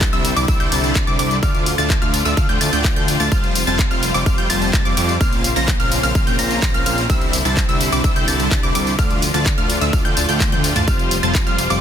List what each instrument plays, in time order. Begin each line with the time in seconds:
Already playing: analog synth bass C2, string section D3 G3 C4 E4
0.01 kick, clap, closed hi-hat, tambourine
0.13 analog synth bass C2, supersaw synth G3 D4 E4 C5 E5, synth pluck E6, closed hi-hat, tambourine
0.25 open hi-hat, tambourine
0.36 analog synth bass C2, supersaw synth G3 D4 E4 C5 D5, synth pluck D6, closed hi-hat, tambourine
0.48 analog synth bass C2, supersaw synth G3 D4 E4 C5 E5, synth pluck E6, kick, closed hi-hat, tambourine
0.60 analog synth bass C2, supersaw synth G3 D4 E4 C5 G5, synth pluck G6, closed hi-hat, tambourine
0.72 analog synth bass C2, supersaw synth G3 D4 E4 C5 A5, synth pluck A6, open hi-hat, tambourine
0.84 closed hi-hat, tambourine
0.96 analog synth bass C2, supersaw synth G3 D4 E4 C5 A5, synth pluck A6, kick, clap, closed hi-hat, tambourine
1.07 analog synth bass C2, supersaw synth G3 D4 E4 C5 D5, synth pluck D6, closed hi-hat, tambourine
1.19 analog synth bass C2, supersaw synth G3 D4 E4 C5 D5, synth pluck D6, open hi-hat, tambourine
1.31 closed hi-hat, tambourine
1.43 analog synth bass D2, string section F3 A3 F4, supersaw synth A3 D4 F4 D5 F5, synth pluck F6, kick, closed hi-hat, tambourine
1.55 closed hi-hat, tambourine
1.66 open hi-hat, tambourine
1.78 analog synth bass D2, supersaw synth A3 D4 F4 D5 A5, synth pluck A6, closed hi-hat, tambourine
1.90 kick, clap, closed hi-hat, tambourine
2.02 analog synth bass D2, supersaw synth A3 D4 F4 D5 F5, synth pluck F6, closed hi-hat, tambourine
2.14 open hi-hat, tambourine
2.25 analog synth bass D2, supersaw synth A3 D4 F4 D5 E5, synth pluck E6, closed hi-hat, tambourine
2.37 analog synth bass D2, supersaw synth A3 D4 F4 D5 F5, synth pluck F6, kick, closed hi-hat, tambourine
2.49 analog synth bass D2, supersaw synth A3 D4 F4 D5 G5, synth pluck G6, closed hi-hat, tambourine
2.61 analog synth bass D2, supersaw synth A3 D4 F4 D5 A5, synth pluck A6, open hi-hat, tambourine
2.73 analog synth bass D2, supersaw synth A3 D4 F4 D5 G5, synth pluck G6, closed hi-hat, tambourine
2.84 kick, clap, closed hi-hat, tambourine
2.96 analog synth bass D2, supersaw synth A3 D4 F4 D5 G5, synth pluck G6, closed hi-hat, tambourine
3.08 open hi-hat, tambourine
3.20 analog synth bass D2, supersaw synth A3 D4 F4 D5 A5, synth pluck A6, closed hi-hat, tambourine
3.32 analog synth bass F1, string section C3 G3, supersaw synth G3 C4 F4 C5 F5, synth pluck F6, kick, closed hi-hat, tambourine
3.44 closed hi-hat, tambourine
3.55 open hi-hat, tambourine
3.67 analog synth bass F1, supersaw synth G3 C4 F4 C5 A5, synth pluck A6, closed hi-hat, tambourine
3.79 kick, clap, closed hi-hat, tambourine
3.91 analog synth bass F1, supersaw synth G3 C4 F4 C5 F5, synth pluck F6, closed hi-hat, tambourine
4.03 open hi-hat, tambourine
4.14 analog synth bass F1, supersaw synth G3 C4 F4 C5 D5, synth pluck D6, closed hi-hat, tambourine
4.26 analog synth bass F1, supersaw synth G3 C4 F4 C5 F5, synth pluck F6, kick, closed hi-hat, tambourine
4.38 analog synth bass F1, supersaw synth G3 C4 F4 C5 G5, synth pluck G6, closed hi-hat, tambourine
4.50 analog synth bass F1, supersaw synth G3 C4 F4 C5 A5, synth pluck A6, open hi-hat, tambourine
4.62 closed hi-hat, tambourine
4.73 analog synth bass F1, supersaw synth G3 C4 F4 C5 A5, synth pluck A6, kick, clap, closed hi-hat, tambourine
4.85 analog synth bass F2, supersaw synth G3 C4 F4 C5 D5, synth pluck D6, closed hi-hat, tambourine
4.97 analog synth bass F2, supersaw synth G3 C4 F4 C5 D5, synth pluck D6, open hi-hat, tambourine
5.09 closed hi-hat, tambourine
5.21 analog synth bass A#1, string section C#3 A#3 C4 F4, supersaw synth A#3 C#4 F4 C5 F5, synth pluck F6, kick, closed hi-hat, tambourine
5.33 closed hi-hat, tambourine
5.44 open hi-hat, tambourine
5.56 analog synth bass A#1, supersaw synth A#3 C#4 F4 C5 A#5, synth pluck A#6, closed hi-hat, tambourine
5.68 kick, clap, closed hi-hat, tambourine
5.80 analog synth bass A#1, supersaw synth A#3 C#4 F4 C5 F5, synth pluck F6, closed hi-hat, tambourine
5.92 open hi-hat, tambourine
6.03 analog synth bass A#1, supersaw synth A#3 C#4 F4 C5 F5, synth pluck F6, closed hi-hat, tambourine
6.15 analog synth bass A#1, supersaw synth A#3 C#4 F4 C5 F5, synth pluck F6, kick, closed hi-hat, tambourine
6.27 analog synth bass A#1, supersaw synth A#3 C#4 F4 C5 G5, synth pluck G6, closed hi-hat, tambourine
6.39 analog synth bass A#1, supersaw synth A#3 C#4 F4 C5 A#5, synth pluck A#6, open hi-hat, tambourine
6.51 closed hi-hat, tambourine
6.62 analog synth bass A#1, supersaw synth A#3 C#4 F4 C5 A#5, synth pluck A#6, kick, clap, closed hi-hat, tambourine
6.74 analog synth bass A#1, supersaw synth A#3 C#4 F4 C5 F5, synth pluck F6, closed hi-hat, tambourine
6.86 analog synth bass A#1, supersaw synth A#3 C#4 F4 C5 F5, synth pluck F6, open hi-hat, tambourine
6.98 closed hi-hat, tambourine
7.10 analog synth bass C2, string section D3 G3 E4, supersaw synth G3 D4 E4 C5 E5, synth pluck E6, kick, closed hi-hat, tambourine
7.22 closed hi-hat, tambourine
7.33 open hi-hat, tambourine
7.45 analog synth bass C2, supersaw synth G3 D4 E4 C5 A5, synth pluck A6, closed hi-hat, tambourine
7.57 kick, clap, closed hi-hat, tambourine
7.69 analog synth bass C2, supersaw synth G3 D4 E4 C5 E5, synth pluck E6, closed hi-hat, tambourine
7.81 open hi-hat, tambourine
7.92 analog synth bass C2, supersaw synth G3 D4 E4 C5 D5, synth pluck D6, closed hi-hat, tambourine
8.04 analog synth bass C2, supersaw synth G3 D4 E4 C5 E5, synth pluck E6, kick, closed hi-hat, tambourine
8.16 analog synth bass C2, supersaw synth G3 D4 E4 C5 G5, synth pluck G6, closed hi-hat, tambourine
8.28 analog synth bass C2, supersaw synth G3 D4 E4 C5 A5, synth pluck A6, open hi-hat, tambourine
8.40 closed hi-hat, tambourine
8.51 analog synth bass C2, supersaw synth G3 D4 E4 C5 A5, synth pluck A6, kick, clap, closed hi-hat, tambourine
8.63 analog synth bass C2, supersaw synth G3 D4 E4 C5 D5, synth pluck D6, closed hi-hat, tambourine
8.75 analog synth bass C2, supersaw synth G3 D4 E4 C5 D5, synth pluck D6, open hi-hat, tambourine
8.87 closed hi-hat, tambourine
8.99 analog synth bass D2, string section F3 A3 F4, supersaw synth A3 D4 F4 D5 F5, synth pluck F6, kick, closed hi-hat, tambourine
9.11 closed hi-hat, tambourine
9.22 open hi-hat, tambourine
9.34 analog synth bass D2, supersaw synth A3 D4 F4 D5 A5, synth pluck A6, closed hi-hat, tambourine
9.46 kick, clap, closed hi-hat, tambourine
9.58 analog synth bass D2, supersaw synth A3 D4 F4 D5 F5, synth pluck F6, closed hi-hat, tambourine
9.70 open hi-hat, tambourine
9.81 analog synth bass D2, supersaw synth A3 D4 F4 D5 E5, synth pluck E6, closed hi-hat, tambourine
9.93 analog synth bass D2, supersaw synth A3 D4 F4 D5 F5, synth pluck F6, kick, closed hi-hat, tambourine
10.05 analog synth bass D2, supersaw synth A3 D4 F4 D5 G5, synth pluck G6, closed hi-hat, tambourine
10.17 analog synth bass D2, supersaw synth A3 D4 F4 D5 A5, synth pluck A6, open hi-hat, tambourine
10.29 analog synth bass D2, supersaw synth A3 D4 F4 D5 G5, synth pluck G6, closed hi-hat, tambourine
10.40 kick, clap, closed hi-hat, high tom, tambourine
10.52 analog synth bass D2, supersaw synth A3 D4 F4 D5 G5, synth pluck G6, closed hi-hat, high tom, tambourine
10.64 open hi-hat, tambourine
10.76 analog synth bass D2, supersaw synth A3 D4 F4 D5 A5, synth pluck A6, mid tom, open hi-hat, tambourine
10.88 analog synth bass F1, string section C3 G3, supersaw synth G3 C4 F4 C5 F5, synth pluck F6, kick, closed hi-hat, tambourine
10.99 closed hi-hat, tambourine
11.11 open hi-hat, tambourine
11.23 analog synth bass F1, supersaw synth G3 C4 F4 C5 A5, synth pluck A6, closed hi-hat, tambourine
11.35 kick, clap, closed hi-hat, tambourine
11.47 analog synth bass F1, supersaw synth G3 C4 F4 C5 F5, synth pluck F6, closed hi-hat, tambourine
11.59 open hi-hat, tambourine
11.70 analog synth bass F1, supersaw synth G3 C4 F4 C5 D5, synth pluck D6, closed hi-hat, tambourine